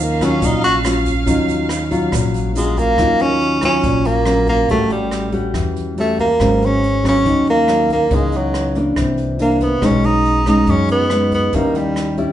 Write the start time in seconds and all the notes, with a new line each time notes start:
Already playing: D#2 D#3 C#4 F5
0.04 A#3
0.21 F#3 C#4 F4, kick, cross-stick, closed hi-hat, shaker
0.41 A#1 A#2 D#4, kick, closed hi-hat, shaker
0.64 F#4, closed hi-hat, shaker
0.85 F#3 C#4 F4, cross-stick, closed hi-hat, shaker
1.06 kick, closed hi-hat, shaker
1.26 D#2 D#3 F#3 C#4 F4, kick, closed hi-hat, shaker
1.48 closed hi-hat, shaker
1.69 cross-stick, closed hi-hat, shaker
1.91 F#3 C#4 F4, kick, closed hi-hat, shaker
2.12 A#1 A#2, kick, cross-stick, closed hi-hat, shaker
2.34 closed hi-hat, shaker
2.55 F#3 G#3 C#4 F4, closed hi-hat, shaker
2.77 A#3, kick, closed hi-hat, shaker
2.98 D#2 D#3 F#3 C#4 F4, kick, cross-stick, closed hi-hat
3.19 C#4, closed hi-hat
3.40 closed hi-hat
3.61 F#3 C#4 F4, kick, cross-stick, closed hi-hat
3.83 A#1 A#2, kick, closed hi-hat
4.05 A#3, closed hi-hat
4.26 F#3 C#4 F4, cross-stick, closed hi-hat
4.47 A#3, kick, closed hi-hat
4.69 A1 A2 G3 A3 C#4 F#4, kick, closed hi-hat
4.90 G3, closed hi-hat
5.11 cross-stick, closed hi-hat
5.32 G3 C#4 F#4, kick, closed hi-hat
5.54 E2 E3, kick, cross-stick, closed hi-hat
5.76 closed hi-hat
5.97 G3 A3 C#4 F#4, closed hi-hat
6.18 A#3, kick, closed hi-hat
6.40 G#1 G#2 F#3 B3 C#4, kick, cross-stick, closed hi-hat
6.62 C#4, closed hi-hat
6.84 closed hi-hat
7.04 F#3 B3 C#4, kick, cross-stick, closed hi-hat
7.08 C#4
7.25 D#2 D#3, kick, closed hi-hat
7.47 A#3, closed hi-hat
7.68 F#3 B3 C#4, cross-stick, closed hi-hat
7.90 A#3, kick, closed hi-hat
8.11 C#2 C#3 E3 G#3 B3 D#4, kick, closed hi-hat
8.32 closed hi-hat
8.36 F#3
8.54 cross-stick, closed hi-hat
8.75 E3 A#3 D4, kick, closed hi-hat
8.96 C2 C3, kick, cross-stick, closed hi-hat
9.18 closed hi-hat
9.39 E3 A#3 D4, closed hi-hat
9.60 B3, kick, closed hi-hat
9.81 B1 B2 G#3 C#4 D#4, kick, cross-stick, closed hi-hat
9.85 C#4
10.04 D#4, closed hi-hat
10.25 closed hi-hat
10.46 G#3 C#4 D#4, kick, cross-stick, closed hi-hat
10.66 F#2 F#3 C#4, kick, closed hi-hat
10.88 B3, closed hi-hat
11.10 G#3 C#4 D#4, cross-stick, closed hi-hat
11.31 B3, kick, closed hi-hat
11.53 D#2 D#3 G3 A#3 C#4 E4, kick, closed hi-hat
11.75 G3, closed hi-hat
11.96 cross-stick, closed hi-hat
12.17 G3 C#4 E4, kick, closed hi-hat